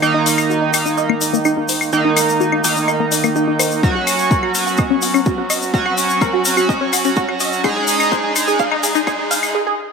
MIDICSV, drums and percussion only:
0, 0, Header, 1, 2, 480
1, 0, Start_track
1, 0, Key_signature, -6, "minor"
1, 0, Tempo, 476190
1, 23, Time_signature, 4, 2, 24, 8
1, 10003, End_track
2, 0, Start_track
2, 0, Title_t, "Drums"
2, 23, Note_on_c, 9, 75, 50
2, 27, Note_on_c, 9, 82, 37
2, 124, Note_off_c, 9, 75, 0
2, 128, Note_off_c, 9, 82, 0
2, 263, Note_on_c, 9, 46, 111
2, 269, Note_on_c, 9, 82, 90
2, 364, Note_off_c, 9, 46, 0
2, 370, Note_off_c, 9, 82, 0
2, 384, Note_on_c, 9, 75, 51
2, 384, Note_on_c, 9, 82, 51
2, 485, Note_off_c, 9, 75, 0
2, 485, Note_off_c, 9, 82, 0
2, 510, Note_on_c, 9, 82, 39
2, 610, Note_off_c, 9, 82, 0
2, 741, Note_on_c, 9, 82, 87
2, 743, Note_on_c, 9, 46, 109
2, 743, Note_on_c, 9, 75, 52
2, 842, Note_off_c, 9, 82, 0
2, 844, Note_off_c, 9, 46, 0
2, 844, Note_off_c, 9, 75, 0
2, 867, Note_on_c, 9, 82, 53
2, 968, Note_off_c, 9, 82, 0
2, 981, Note_on_c, 9, 82, 41
2, 1082, Note_off_c, 9, 82, 0
2, 1104, Note_on_c, 9, 75, 52
2, 1205, Note_off_c, 9, 75, 0
2, 1221, Note_on_c, 9, 82, 99
2, 1223, Note_on_c, 9, 46, 103
2, 1322, Note_off_c, 9, 82, 0
2, 1324, Note_off_c, 9, 46, 0
2, 1349, Note_on_c, 9, 82, 57
2, 1450, Note_off_c, 9, 82, 0
2, 1458, Note_on_c, 9, 82, 42
2, 1463, Note_on_c, 9, 75, 51
2, 1559, Note_off_c, 9, 82, 0
2, 1564, Note_off_c, 9, 75, 0
2, 1698, Note_on_c, 9, 82, 85
2, 1703, Note_on_c, 9, 46, 106
2, 1799, Note_off_c, 9, 82, 0
2, 1804, Note_off_c, 9, 46, 0
2, 1824, Note_on_c, 9, 75, 51
2, 1831, Note_on_c, 9, 82, 51
2, 1925, Note_off_c, 9, 75, 0
2, 1931, Note_off_c, 9, 82, 0
2, 1940, Note_on_c, 9, 82, 42
2, 2041, Note_off_c, 9, 82, 0
2, 2183, Note_on_c, 9, 46, 108
2, 2183, Note_on_c, 9, 75, 50
2, 2187, Note_on_c, 9, 82, 91
2, 2284, Note_off_c, 9, 46, 0
2, 2284, Note_off_c, 9, 75, 0
2, 2288, Note_off_c, 9, 82, 0
2, 2310, Note_on_c, 9, 82, 53
2, 2411, Note_off_c, 9, 82, 0
2, 2425, Note_on_c, 9, 82, 42
2, 2526, Note_off_c, 9, 82, 0
2, 2544, Note_on_c, 9, 75, 51
2, 2645, Note_off_c, 9, 75, 0
2, 2663, Note_on_c, 9, 46, 109
2, 2663, Note_on_c, 9, 82, 99
2, 2764, Note_off_c, 9, 46, 0
2, 2764, Note_off_c, 9, 82, 0
2, 2787, Note_on_c, 9, 82, 48
2, 2888, Note_off_c, 9, 82, 0
2, 2903, Note_on_c, 9, 75, 50
2, 2906, Note_on_c, 9, 82, 37
2, 3004, Note_off_c, 9, 75, 0
2, 3007, Note_off_c, 9, 82, 0
2, 3143, Note_on_c, 9, 46, 106
2, 3143, Note_on_c, 9, 82, 88
2, 3244, Note_off_c, 9, 46, 0
2, 3244, Note_off_c, 9, 82, 0
2, 3264, Note_on_c, 9, 75, 50
2, 3265, Note_on_c, 9, 82, 57
2, 3365, Note_off_c, 9, 75, 0
2, 3366, Note_off_c, 9, 82, 0
2, 3384, Note_on_c, 9, 82, 37
2, 3484, Note_off_c, 9, 82, 0
2, 3623, Note_on_c, 9, 46, 106
2, 3623, Note_on_c, 9, 75, 51
2, 3629, Note_on_c, 9, 82, 93
2, 3724, Note_off_c, 9, 46, 0
2, 3724, Note_off_c, 9, 75, 0
2, 3730, Note_off_c, 9, 82, 0
2, 3743, Note_on_c, 9, 82, 54
2, 3844, Note_off_c, 9, 82, 0
2, 3863, Note_on_c, 9, 36, 116
2, 3866, Note_on_c, 9, 82, 35
2, 3964, Note_off_c, 9, 36, 0
2, 3966, Note_off_c, 9, 82, 0
2, 4103, Note_on_c, 9, 46, 104
2, 4103, Note_on_c, 9, 75, 51
2, 4107, Note_on_c, 9, 82, 92
2, 4204, Note_off_c, 9, 46, 0
2, 4204, Note_off_c, 9, 75, 0
2, 4208, Note_off_c, 9, 82, 0
2, 4222, Note_on_c, 9, 82, 49
2, 4323, Note_off_c, 9, 82, 0
2, 4343, Note_on_c, 9, 36, 123
2, 4345, Note_on_c, 9, 82, 41
2, 4444, Note_off_c, 9, 36, 0
2, 4446, Note_off_c, 9, 82, 0
2, 4464, Note_on_c, 9, 75, 50
2, 4565, Note_off_c, 9, 75, 0
2, 4582, Note_on_c, 9, 82, 86
2, 4584, Note_on_c, 9, 46, 100
2, 4682, Note_off_c, 9, 82, 0
2, 4684, Note_off_c, 9, 46, 0
2, 4704, Note_on_c, 9, 82, 46
2, 4805, Note_off_c, 9, 82, 0
2, 4810, Note_on_c, 9, 82, 41
2, 4823, Note_on_c, 9, 36, 114
2, 4823, Note_on_c, 9, 75, 49
2, 4911, Note_off_c, 9, 82, 0
2, 4924, Note_off_c, 9, 36, 0
2, 4924, Note_off_c, 9, 75, 0
2, 5056, Note_on_c, 9, 82, 78
2, 5063, Note_on_c, 9, 46, 105
2, 5157, Note_off_c, 9, 82, 0
2, 5164, Note_off_c, 9, 46, 0
2, 5184, Note_on_c, 9, 75, 51
2, 5188, Note_on_c, 9, 82, 56
2, 5285, Note_off_c, 9, 75, 0
2, 5289, Note_off_c, 9, 82, 0
2, 5298, Note_on_c, 9, 82, 33
2, 5303, Note_on_c, 9, 36, 121
2, 5399, Note_off_c, 9, 82, 0
2, 5404, Note_off_c, 9, 36, 0
2, 5543, Note_on_c, 9, 46, 104
2, 5543, Note_on_c, 9, 75, 49
2, 5547, Note_on_c, 9, 82, 97
2, 5644, Note_off_c, 9, 46, 0
2, 5644, Note_off_c, 9, 75, 0
2, 5648, Note_off_c, 9, 82, 0
2, 5665, Note_on_c, 9, 82, 51
2, 5766, Note_off_c, 9, 82, 0
2, 5783, Note_on_c, 9, 36, 109
2, 5786, Note_on_c, 9, 82, 36
2, 5884, Note_off_c, 9, 36, 0
2, 5887, Note_off_c, 9, 82, 0
2, 5904, Note_on_c, 9, 75, 49
2, 6005, Note_off_c, 9, 75, 0
2, 6023, Note_on_c, 9, 46, 97
2, 6023, Note_on_c, 9, 82, 88
2, 6124, Note_off_c, 9, 46, 0
2, 6124, Note_off_c, 9, 82, 0
2, 6145, Note_on_c, 9, 82, 46
2, 6246, Note_off_c, 9, 82, 0
2, 6263, Note_on_c, 9, 36, 116
2, 6264, Note_on_c, 9, 75, 48
2, 6264, Note_on_c, 9, 82, 38
2, 6364, Note_off_c, 9, 36, 0
2, 6364, Note_off_c, 9, 82, 0
2, 6365, Note_off_c, 9, 75, 0
2, 6499, Note_on_c, 9, 82, 100
2, 6504, Note_on_c, 9, 46, 104
2, 6600, Note_off_c, 9, 82, 0
2, 6604, Note_off_c, 9, 46, 0
2, 6623, Note_on_c, 9, 82, 49
2, 6625, Note_on_c, 9, 75, 51
2, 6724, Note_off_c, 9, 82, 0
2, 6726, Note_off_c, 9, 75, 0
2, 6743, Note_on_c, 9, 36, 120
2, 6748, Note_on_c, 9, 82, 41
2, 6844, Note_off_c, 9, 36, 0
2, 6848, Note_off_c, 9, 82, 0
2, 6984, Note_on_c, 9, 46, 101
2, 6984, Note_on_c, 9, 75, 48
2, 6985, Note_on_c, 9, 82, 93
2, 7084, Note_off_c, 9, 46, 0
2, 7084, Note_off_c, 9, 75, 0
2, 7085, Note_off_c, 9, 82, 0
2, 7100, Note_on_c, 9, 82, 49
2, 7201, Note_off_c, 9, 82, 0
2, 7217, Note_on_c, 9, 82, 37
2, 7223, Note_on_c, 9, 36, 112
2, 7318, Note_off_c, 9, 82, 0
2, 7324, Note_off_c, 9, 36, 0
2, 7345, Note_on_c, 9, 75, 50
2, 7445, Note_off_c, 9, 75, 0
2, 7457, Note_on_c, 9, 82, 74
2, 7463, Note_on_c, 9, 46, 98
2, 7558, Note_off_c, 9, 82, 0
2, 7564, Note_off_c, 9, 46, 0
2, 7587, Note_on_c, 9, 82, 45
2, 7688, Note_off_c, 9, 82, 0
2, 7701, Note_on_c, 9, 82, 35
2, 7703, Note_on_c, 9, 36, 110
2, 7703, Note_on_c, 9, 75, 51
2, 7802, Note_off_c, 9, 82, 0
2, 7804, Note_off_c, 9, 36, 0
2, 7804, Note_off_c, 9, 75, 0
2, 7935, Note_on_c, 9, 82, 92
2, 7943, Note_on_c, 9, 46, 99
2, 8036, Note_off_c, 9, 82, 0
2, 8044, Note_off_c, 9, 46, 0
2, 8063, Note_on_c, 9, 82, 53
2, 8064, Note_on_c, 9, 75, 54
2, 8164, Note_off_c, 9, 82, 0
2, 8165, Note_off_c, 9, 75, 0
2, 8183, Note_on_c, 9, 36, 116
2, 8184, Note_on_c, 9, 82, 39
2, 8284, Note_off_c, 9, 36, 0
2, 8285, Note_off_c, 9, 82, 0
2, 8423, Note_on_c, 9, 82, 90
2, 8424, Note_on_c, 9, 46, 99
2, 8424, Note_on_c, 9, 75, 49
2, 8524, Note_off_c, 9, 82, 0
2, 8525, Note_off_c, 9, 46, 0
2, 8525, Note_off_c, 9, 75, 0
2, 8546, Note_on_c, 9, 82, 51
2, 8646, Note_off_c, 9, 82, 0
2, 8661, Note_on_c, 9, 82, 35
2, 8664, Note_on_c, 9, 36, 112
2, 8761, Note_off_c, 9, 82, 0
2, 8764, Note_off_c, 9, 36, 0
2, 8785, Note_on_c, 9, 75, 50
2, 8885, Note_off_c, 9, 75, 0
2, 8904, Note_on_c, 9, 46, 98
2, 8904, Note_on_c, 9, 82, 85
2, 9004, Note_off_c, 9, 46, 0
2, 9004, Note_off_c, 9, 82, 0
2, 9022, Note_on_c, 9, 82, 53
2, 9123, Note_off_c, 9, 82, 0
2, 9143, Note_on_c, 9, 36, 117
2, 9144, Note_on_c, 9, 75, 52
2, 9148, Note_on_c, 9, 82, 34
2, 9244, Note_off_c, 9, 36, 0
2, 9244, Note_off_c, 9, 75, 0
2, 9249, Note_off_c, 9, 82, 0
2, 9383, Note_on_c, 9, 46, 101
2, 9389, Note_on_c, 9, 82, 79
2, 9484, Note_off_c, 9, 46, 0
2, 9489, Note_off_c, 9, 82, 0
2, 9505, Note_on_c, 9, 75, 54
2, 9507, Note_on_c, 9, 82, 48
2, 9605, Note_off_c, 9, 75, 0
2, 9608, Note_off_c, 9, 82, 0
2, 10003, End_track
0, 0, End_of_file